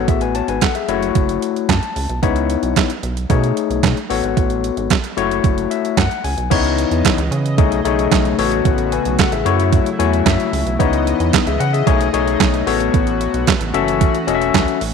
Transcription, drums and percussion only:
0.08 kick loud
0.08 closed hi-hat medium
0.21 closed hi-hat medium
0.35 closed hi-hat medium
0.48 closed hi-hat medium
0.61 kick loud
0.61 snare loud
0.61 clap loud
0.61 closed hi-hat loud
0.75 closed hi-hat medium
0.89 closed hi-hat medium
1.03 closed hi-hat medium
1.15 kick loud
1.15 closed hi-hat medium
1.29 closed hi-hat medium
1.42 closed hi-hat medium
1.56 closed hi-hat soft
1.69 kick loud
1.69 snare loud
1.69 clap medium
1.69 closed hi-hat medium
1.83 closed hi-hat soft
1.96 open hi-hat medium
2.09 closed hi-hat soft
2.23 kick loud
2.23 closed hi-hat medium
2.36 closed hi-hat soft
2.50 closed hi-hat medium
2.63 closed hi-hat medium
2.76 kick loud
2.76 snare loud
2.76 clap medium
2.76 closed hi-hat medium
2.90 closed hi-hat medium
3.03 closed hi-hat medium
3.17 closed hi-hat medium
3.30 kick loud
3.30 closed hi-hat medium
3.44 closed hi-hat medium
3.57 closed hi-hat medium
3.71 closed hi-hat soft
3.83 kick loud
3.83 snare loud
3.83 clap medium
3.83 closed hi-hat medium
3.97 closed hi-hat soft
4.10 open hi-hat medium
4.24 closed hi-hat soft
4.37 kick loud
4.37 closed hi-hat medium
4.50 closed hi-hat soft
4.64 closed hi-hat medium
4.77 closed hi-hat soft
4.90 kick loud
4.90 snare loud
4.90 clap medium
4.90 closed hi-hat loud
5.04 closed hi-hat medium
5.18 closed hi-hat medium
5.31 closed hi-hat medium
5.44 kick loud
5.44 closed hi-hat medium
5.58 closed hi-hat medium
5.71 closed hi-hat medium
5.85 closed hi-hat medium
5.97 kick loud
5.97 snare loud
5.97 clap medium
5.97 closed hi-hat medium
6.11 closed hi-hat soft
6.24 open hi-hat medium
6.38 closed hi-hat medium
6.51 kick loud
6.51 closed hi-hat medium
6.51 crash loud
6.64 closed hi-hat soft
6.78 closed hi-hat medium
6.92 closed hi-hat medium
7.05 kick loud
7.05 snare loud
7.05 clap loud
7.05 closed hi-hat loud
7.18 closed hi-hat medium
7.32 closed hi-hat medium
7.46 closed hi-hat medium
7.58 kick loud
7.58 closed hi-hat medium
7.72 closed hi-hat medium
7.85 closed hi-hat medium
7.99 closed hi-hat soft
8.12 kick loud
8.12 snare loud
8.12 clap medium
8.12 closed hi-hat medium
8.25 closed hi-hat soft
8.39 open hi-hat medium
8.52 closed hi-hat soft
8.65 kick loud
8.65 closed hi-hat medium
8.78 closed hi-hat soft
8.92 closed hi-hat medium
9.05 closed hi-hat medium
9.19 kick loud
9.19 snare loud
9.19 clap medium
9.19 closed hi-hat loud
9.32 closed hi-hat medium
9.46 closed hi-hat medium
9.60 closed hi-hat medium
9.73 kick loud
9.73 closed hi-hat medium
9.86 closed hi-hat medium
10.00 closed hi-hat medium
10.13 closed hi-hat soft
10.26 kick loud
10.26 snare loud
10.26 clap medium
10.26 closed hi-hat medium
10.40 closed hi-hat soft
10.53 open hi-hat medium
10.67 closed hi-hat soft
10.80 kick loud
10.80 closed hi-hat medium
10.93 closed hi-hat medium
11.07 closed hi-hat medium
11.20 closed hi-hat medium
11.33 kick loud
11.33 snare loud
11.33 clap loud
11.33 closed hi-hat loud
11.47 closed hi-hat medium
11.60 closed hi-hat medium
11.74 closed hi-hat medium
11.87 kick loud
11.87 closed hi-hat medium
12.01 closed hi-hat medium
12.14 closed hi-hat medium
12.28 closed hi-hat soft
12.40 kick loud
12.40 snare loud
12.40 clap medium
12.40 closed hi-hat medium
12.54 closed hi-hat soft
12.67 open hi-hat medium
12.80 closed hi-hat medium
12.94 kick loud
12.94 closed hi-hat medium
13.07 closed hi-hat soft
13.21 closed hi-hat medium
13.34 closed hi-hat medium
13.47 kick loud
13.47 snare loud
13.47 clap loud
13.47 closed hi-hat loud
13.61 closed hi-hat medium
13.74 closed hi-hat medium
13.88 closed hi-hat medium
14.01 kick loud
14.01 closed hi-hat medium
14.15 closed hi-hat medium
14.28 closed hi-hat medium
14.42 closed hi-hat medium
14.54 kick loud
14.54 snare loud
14.54 clap medium
14.54 closed hi-hat medium
14.68 closed hi-hat soft
14.81 open hi-hat medium

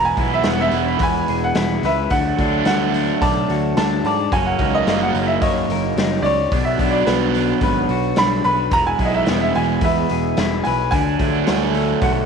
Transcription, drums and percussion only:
0.17 kick medium
0.17 open hi-hat soft
0.43 snare loud
0.43 open hi-hat medium
0.71 open hi-hat soft
0.99 kick loud
0.99 open hi-hat medium
1.28 open hi-hat medium
1.55 snare loud
1.55 open hi-hat medium
1.83 snare soft
1.83 open hi-hat medium
2.10 kick loud
2.10 open hi-hat medium
2.38 kick medium
2.38 open hi-hat soft
2.65 snare medium
2.65 open hi-hat medium
2.94 open hi-hat medium
3.22 kick loud
3.22 open hi-hat medium
3.50 open hi-hat soft
3.77 snare loud
3.77 open hi-hat medium
4.05 open hi-hat soft
4.32 kick loud
4.32 open hi-hat medium
4.59 kick medium
4.59 open hi-hat soft
4.87 snare medium
4.87 open hi-hat medium
5.15 open hi-hat soft
5.42 kick loud
5.42 open hi-hat medium
5.70 open hi-hat medium
5.97 snare loud
5.97 open hi-hat medium
6.25 open hi-hat medium
6.52 kick loud
6.52 open hi-hat medium
6.79 kick medium
6.79 open hi-hat medium
7.07 snare medium
7.07 open hi-hat medium
7.35 open hi-hat medium
7.61 kick loud
7.61 open hi-hat medium
7.89 open hi-hat soft
8.16 snare loud
8.16 open hi-hat medium
8.44 open hi-hat soft
8.71 kick loud
8.71 open hi-hat medium
8.99 kick medium
8.99 open hi-hat soft
9.26 snare medium
9.26 open hi-hat medium
9.54 open hi-hat soft
9.81 kick loud
9.81 open hi-hat medium
10.09 open hi-hat medium
10.37 snare loud
10.37 open hi-hat medium
10.65 open hi-hat medium
10.92 kick loud
10.92 open hi-hat medium
11.19 kick medium
11.19 open hi-hat medium
11.47 snare medium
11.47 open hi-hat medium
11.74 open hi-hat soft
12.01 kick loud
12.01 open hi-hat medium

